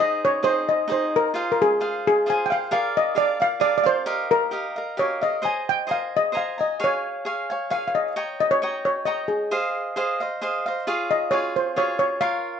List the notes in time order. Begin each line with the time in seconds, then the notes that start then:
Already playing: D#4 G#4
0.00 C5 D#5
0.25 C#5
0.43 D#4 G#4 C5 D#5
0.69 D#5
0.88 D#4 G#4 C5 D#5
0.92 C5
1.16 A#4
1.34 F4 G#4 C5 F5
1.52 A#4
1.62 G#4
1.80 F4 G#4 C5 F5
2.07 G#4
2.26 F4 G#4 C5 F5 G#5
2.46 G5
2.50 G#4 C5 F5
2.71 G#4 A#4 D5 F5
2.97 D#5
3.15 G#4 A#4 D5 F5
3.40 A#4 D5 F5
3.60 G#4 A#4 D5 F5
3.78 D5
3.83 A#4 C5 D5 F5
4.06 G4 A#4 D#5 F5
4.31 A#4
4.51 G4 A#4 D#5 F5
4.76 A#4 D#5 F5
4.97 G4 A#4 C#5 D#5 F5
5.21 A#4 D#5 F5
5.42 C5 D#5 G#5 A#5
5.69 G5
5.87 C5 D#5 G#5 A#5
5.91 F5
6.17 D#5
6.32 C5 D#5 G#5 A#5
6.37 F5
6.58 D#5 G#5 A#5
6.80 G#4 C#5 F5 G#5
6.84 C#5
7.25 G#4 C#5 F5 G#5
7.50 C#5 F5 G#5
7.70 G#4 C#5 F5 G#5
7.88 F5
7.95 D#5
8.16 C#5 D#5 G5 A#5
8.40 D#5
8.51 C#5
8.62 C#5 D#5 G5 A#5
8.85 C#5
9.05 C#5 D#5 G5 A#5
9.28 G#4
9.51 G#4 C5 D#5 F5
9.96 G#4 C5 D#5 F5
10.20 C5 D#5 F5
10.41 G#4 C5 D#5 F5
10.66 C5 D#5 F5
10.87 F4 G#4 C#5 F5
11.11 D#5
11.31 F4 G#4 C#5 F5
11.56 C5
11.76 F4 G#4 C#5 F5
11.99 C#5
12.21 F4 A#4 C#5 F5